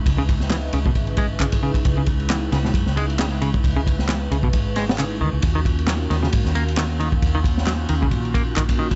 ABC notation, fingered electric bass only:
X:1
M:4/4
L:1/16
Q:"Swing 16ths" 1/4=134
K:C#dor
V:1 name="Fingered electric bass" clef=bass
C,,6 C,,2 G,,,8 | C,,6 C,, z F,, C,,6- C,, | C,,6 C,,2 G,,,6 D,, C,, | D,,6 D,, z G,, D,,6- D,, |
D,,6 D,,2 A,,,8 |]